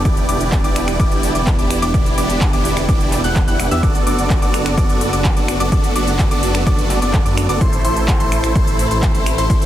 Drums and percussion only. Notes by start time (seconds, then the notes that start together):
0.05 kick, closed hi-hat
0.17 closed hi-hat
0.29 open hi-hat
0.41 closed hi-hat
0.52 kick, clap, closed hi-hat
0.64 closed hi-hat
0.76 finger snap, open hi-hat
0.88 finger snap, closed hi-hat
1.00 kick, closed hi-hat
1.11 closed hi-hat
1.23 open hi-hat
1.35 closed hi-hat
1.47 kick, clap, closed hi-hat
1.59 closed hi-hat
1.71 finger snap, open hi-hat
1.82 closed hi-hat
1.94 kick, closed hi-hat
2.06 closed hi-hat
2.18 open hi-hat
2.30 closed hi-hat
2.41 kick, clap, closed hi-hat
2.53 closed hi-hat
2.65 open hi-hat
2.77 finger snap, closed hi-hat
2.89 kick, closed hi-hat
3.01 closed hi-hat
3.12 clap, open hi-hat
3.24 closed hi-hat
3.36 kick, clap, closed hi-hat
3.48 closed hi-hat
3.60 finger snap, open hi-hat
3.71 closed hi-hat
3.83 kick, closed hi-hat
3.95 closed hi-hat
4.07 open hi-hat
4.19 closed hi-hat
4.30 kick, clap, closed hi-hat
4.42 closed hi-hat
4.54 finger snap, open hi-hat
4.66 finger snap, closed hi-hat
4.78 kick, closed hi-hat
4.89 closed hi-hat
5.01 open hi-hat
5.13 closed hi-hat
5.24 kick, clap, closed hi-hat
5.37 closed hi-hat
5.48 finger snap, open hi-hat
5.60 closed hi-hat
5.72 kick, closed hi-hat
5.84 closed hi-hat
5.96 open hi-hat
6.07 closed hi-hat
6.19 kick, clap, closed hi-hat
6.31 closed hi-hat
6.43 open hi-hat
6.55 finger snap, closed hi-hat
6.67 kick, closed hi-hat
6.78 closed hi-hat
6.90 clap, open hi-hat
7.02 closed hi-hat
7.14 kick, clap, closed hi-hat
7.26 closed hi-hat
7.37 finger snap, open hi-hat
7.49 closed hi-hat
7.61 kick, closed hi-hat
7.73 closed hi-hat
7.85 open hi-hat
7.97 closed hi-hat
8.08 kick, clap, closed hi-hat
8.20 closed hi-hat
8.32 finger snap, open hi-hat
8.44 finger snap, closed hi-hat
8.55 kick, closed hi-hat
8.67 closed hi-hat
8.79 open hi-hat
8.91 closed hi-hat
9.03 kick, clap, closed hi-hat
9.15 closed hi-hat
9.26 finger snap, open hi-hat
9.38 closed hi-hat
9.50 kick, closed hi-hat
9.62 closed hi-hat